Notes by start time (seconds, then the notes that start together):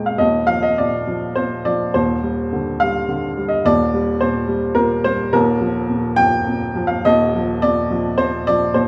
Already playing: D#1 D#2 A#2 G#3 A#4 G5
0.06 F5
0.18 D#1 D#2 D#5
0.47 F3 F5
0.62 D#5
0.78 A#2 D5
1.07 F3
1.36 A#2 C5
1.65 F3 D5
1.94 D#1 D#2 C5
2.22 G3
2.52 D3
2.80 G3 F5
3.09 D3
3.37 G3
3.48 D#5
3.65 D#1 D#2 D5
3.94 G3
4.21 A#2 C5
4.47 G3
4.75 A#2 A#4
5.04 G3 C5
5.33 D#1 D#2 A#4
5.61 F3
5.89 A#2
6.16 F3 G5
6.47 A#2
6.75 F3
6.87 F5
7.05 D#1 D#2 D#5
7.34 F3
7.62 A#2 D5
7.91 F3
8.18 A#2 C5
8.47 F3 D5
8.74 D#1 D#2 C5